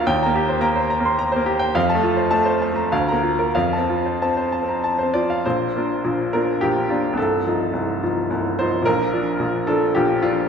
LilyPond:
<<
  \new Staff \with { instrumentName = "Grand piano" } { \time 3/4 \key bes \major \tempo 4 = 105 << { g''16 bes''16 g'16 c''16 bes''16 c''16 bes''16 c'''16 bes''16 c''16 g'16 g''16 | f''16 a''16 f'16 c''16 a''16 c''16 a''16 bes''16 f''16 bes''16 f'16 bes'16 | f''16 a''16 f'16 c''16 a''16 c''16 a''16 bes''16 a''16 c''16 f'16 f''16 | r2. |
r2. | r2. | } \\ { r2. | r2. | r2 r8 d''8 | c''4. bes'8 g'8 f'8 |
a'2 r8 c''8 | bes'4. a'8 g'8 f'8 | } >> }
  \new Staff \with { instrumentName = "Grand piano" } { \time 3/4 \key bes \major \tuplet 3/2 { ees,8 bes4 bes4 bes8~ bes8 bes4 } | \tuplet 3/2 { f,8 a4 a4 a8 d,8 bes4 } | \tuplet 3/2 { f,8 c'4 c'4 c'8~ c'8 c'4 } | <bes,, bes,>8 <bes d' f'>8 <bes,, bes,>8 <bes d' f'>8 <bes,, bes,>8 <bes d'>8 |
<c,, c,>8 <f ees' f'>8 <c,, c,>8 <f ees' f'>8 <c,, c,>8 <f ees' f'>8 | <bes,, bes,>8 <f d' f'>8 <bes,, bes,>8 <f d' f'>8 <bes,, bes,>8 <f d'>8 | }
>>